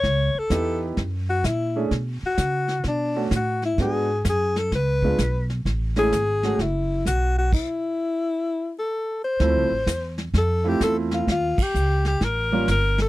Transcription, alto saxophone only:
Already playing: C#5
0.39 A4
1.30 F#4
1.46 E4
2.26 F#4
2.88 D4
3.36 F#4
3.65 E4
3.82 G#4
4.29 G#4
4.58 A4
4.75 B4
5.99 G#4
6.61 E4
7.07 F#4
7.38 F#4
7.54 E4
8.79 A4
9.24 C5
10.38 A4
10.69 G4
10.84 A4
11.14 F4
11.32 F4
11.62 G4
12.08 G4
12.24 A#4
12.71 A#4
13.02 A4

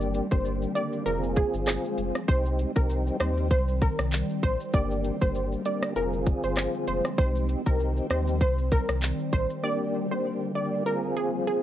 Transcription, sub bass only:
Already playing: G1
0.32 G1
1.06 F1
1.54 G1
1.98 F1
2.29 C2
2.77 C2
3.20 D#2
3.51 C2
3.99 C2
4.43 A#1
4.74 G1
5.22 G1
5.96 F1
6.44 G1
6.88 F1
7.18 C2
7.66 C2
8.10 D#2
8.41 C2
8.89 C2
9.33 A#1

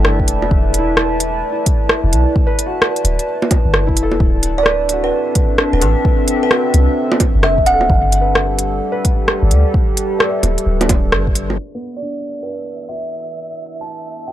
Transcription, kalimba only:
4.58 D5
5.04 B4
5.73 B4
5.82 A4
6.43 B4
6.51 B4
7.44 E5
7.66 F#5
11.97 D5
12.43 B4
12.89 E5
13.81 A5
14.28 G5

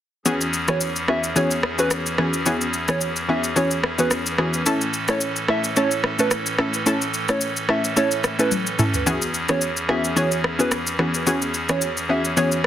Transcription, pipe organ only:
0.25 E2 E3 C#4 G#4
4.66 A2 A4
9.06 E2 G#4

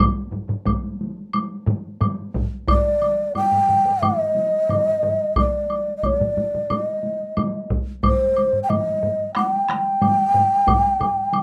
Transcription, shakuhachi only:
2.69 D5
3.36 G5
4.04 D#5
5.39 D5
5.97 D#5
6.05 C#5
6.18 D5
6.72 D#5
8.04 C5
8.63 G5
8.70 D#5
9.35 F#5
9.53 G5

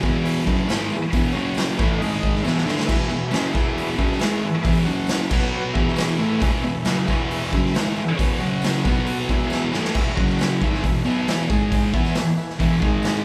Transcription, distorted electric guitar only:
0.03 E2 B2 E3
0.46 F#2 C#3 F#3
0.68 G#2 D#3 G#3
0.91 muted distorted electric guitar stroke
1.13 E2 B2 E3
1.35 F#2 C#3 F#3
1.79 A2 E3 A3
2.01 G#2 D#3 G#3
2.44 E2 B2 E3
2.66 D3 A3 D4
2.87 E2 B2 E3
3.11 E2 B2
3.32 F#2 C#3 F#3
3.54 E2 B2 E3
3.97 F#2 C#3 F#3
4.20 G#2 D#3 G#3
4.44 muted distorted electric guitar stroke
4.65 E2 B2 E3
4.87 F#2 C#3 F#3
5.31 B2 F#3 B3
5.75 E2 B2 E3
6.19 A2 E3 A3
6.41 E2 B2 E3
6.64 E2 B2
6.86 F#2 C#3 F#3
7.09 E2 B2 E3
7.53 F#2 C#3 F#3
7.76 G#2 D#3 G#3
7.98 muted distorted electric guitar stroke
8.19 E2 B2 E3
8.41 F#2 C#3 F#3
8.86 B2 F#3 B3
9.28 E2 B2 E3
9.73 A2 E3 A3
9.95 E2 B2 E3
10.17 F#2 C#3 F#3
10.63 G#2 D#3 G#3
10.84 E2 B2
11.05 B2 F#3 B3
11.28 E2 B2 E3
11.50 G#2 D#3 G#3
11.93 E3 B3 E4
12.59 E2 B2 E3
12.82 G#2 D#3 G#3

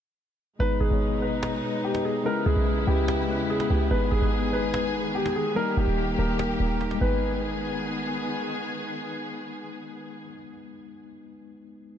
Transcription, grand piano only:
0.60 B4
0.80 G#4
1.22 B4
1.84 G4
2.05 G#4
2.26 A#4
2.46 G#4
2.87 G4
3.50 G#4
3.70 G4
3.91 B4
4.11 G#4
4.53 B4
5.15 G4
5.36 G#4
5.56 A#4
5.77 G4
6.19 A#4
7.01 B4

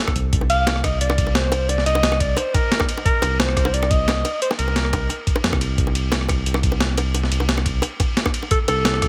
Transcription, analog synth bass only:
0.16 C2
0.33 C2
0.84 C2
1.01 C2
1.86 C2
2.20 C2
3.23 C2
3.57 C2
3.74 C2
4.59 C2
4.93 C2
5.44 F2
5.53 C2
5.78 C2
6.29 C2
6.46 C2
7.31 C2
7.66 C2
8.68 C2
9.02 C2

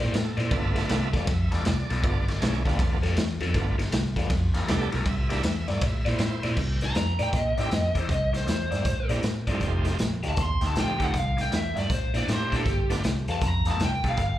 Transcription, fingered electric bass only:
0.00 A#2
0.13 A2
0.37 A#2
0.51 G1
0.90 C2
1.14 E2
1.27 F2
1.52 E2
1.66 C2
1.90 B1
2.04 G1
2.42 B1
2.65 D2
2.79 E2
3.03 F2
3.17 E2
3.41 F2
3.54 G1
3.92 C2
4.16 E2
4.30 F2
4.54 E2
4.68 C2
4.93 B1
5.05 C2
5.44 E2
5.68 G2
5.81 A2
6.06 A#2
6.19 A2
6.44 A#2
6.57 C2
6.95 F2
7.19 A2
7.33 A#2
7.58 A2
7.72 F2
7.95 E2
8.09 C2
8.47 E2
8.71 G2
8.85 A2
9.09 A#2
9.23 A2
9.47 G2
9.61 F1
10.00 A#1
10.24 D2
10.37 D#2
10.62 D2
10.76 A#1
11.00 D2
11.14 C2
11.52 E2
11.76 G2
11.90 A2
12.14 A#2
12.28 A2
12.52 A#2
12.66 G1
13.04 C2
13.28 E2
13.42 F2
13.66 E2
13.80 C2
14.04 B1
14.18 G1

